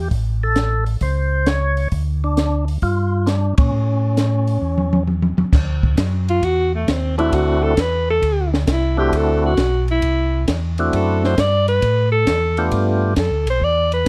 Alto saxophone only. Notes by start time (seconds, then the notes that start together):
6.30 F4
6.44 F#4
6.75 A3
6.90 C4
7.18 E4
7.34 F#4
7.63 A4
7.81 B4
8.11 A4
8.72 E4
8.99 G4
9.17 A4
9.46 F#4
9.91 E4
10.96 A4
11.25 C5
11.40 D5
11.69 B4
12.12 A4
13.19 A4
13.50 C5
13.64 D5
13.94 B4